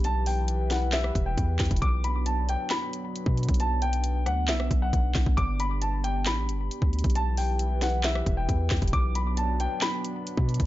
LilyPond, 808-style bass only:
\new Staff \with { instrumentName = "808-style bass" } { \clef bass \time 4/4 \key b \minor \tempo 4 = 135 b,,2~ b,,8 e,,8 e,8 e,16 e,,16 | b,,4.~ b,,16 r4. b,8 b,,16~ | b,,4. d,8 b,,8 b,,8 b,,8 b,,16 b,,16 | g,,2 a,,8 g,,8 r16 d,8 b,,16~ |
b,,2~ b,,8 e,,8 e,8 e,16 e,,16 | b,,4.~ b,,16 r4. b,8 b,,16 | }